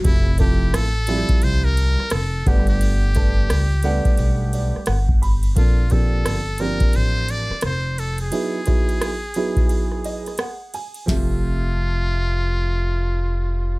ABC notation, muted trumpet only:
X:1
M:4/4
L:1/16
Q:"Swing 16ths" 1/4=87
K:F
V:1 name="Muted trumpet"
E2 G2 A4 c B3 A2 G G- | G12- G2 z2 | F2 A4 B2 c2 d2 c2 A _A- | _A12- A2 z2 |
F16 |]